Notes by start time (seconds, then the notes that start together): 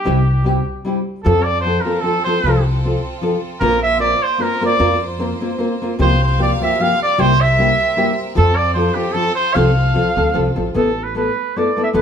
Already playing: G4
0.05 C2 C3 G3 C4 E4 G4
0.44 G3 C4 E4 G4
0.85 G3 C4 E4 G4
1.23 F2 F3 C4 F4 A4
1.44 D5
1.61 C5
1.65 F3 C4 F4 A4
1.81 F3 A#4
1.85 C4 F4 A4
2.00 F3 C4 F4 A4
2.05 A4
2.24 F3 C4 F4 A4 C5
2.44 C2 F3 C4 F4 A4
2.84 F3 C4 F4 A4
3.21 F3 C4 F4 A4
3.60 A#1 A#3 C4 F4 A#4 C5
3.83 E5
3.98 A#3 C4 F4 A#4 D5
4.22 C5
4.38 A#3 C4 F4 A#4
4.61 A#3 C4 F4 A#4
4.66 D5
4.79 F2 A#3 C4 F4 A#4
5.18 A#3 C4 F4 A#4
5.41 A#3 C4 F4 A#4
5.58 A#3 C4 F4 A#4
5.82 A#3 C4 F4 A#4
5.99 C2 C3 F3 A#3 C4 F4 G4 A#4 C5 F5
6.24 C5
6.38 F3 A#3 F4 G4
6.42 D5
6.60 F3 A#3 F4 G4 E5
6.79 F3 A#3 F4 G4 F5
7.03 D5
7.18 C2 C3 G3 A#3 E4 G4 C5 E5
7.41 E5
7.58 G3 A#3 E4 G4
7.96 G3 A#3 E4 G4
8.35 F2 F3 C4 F4 A4
8.56 D5
8.74 F3 C4 F4 A4 C5
8.94 F3 C4 F4 G4 A4
9.13 F3 C4 F4 A4
9.35 C5
9.54 C2 F3 C4 F4 A4 F5
9.94 F3 C4 F4 A4
10.16 D2 F3 C4 F4 A4
10.34 C2 F3 C4 F4 A4
10.56 A1 F3 C4 F4 A4
10.74 A1 A3 B3 E4 A4
11.04 B4
11.15 A3 B3 E4 A4 B4
11.56 A3 B3 E4 A4 D5
11.76 A3 B3 E4 A4
11.84 E5
11.93 E2 A3 B3 E4 A4 B4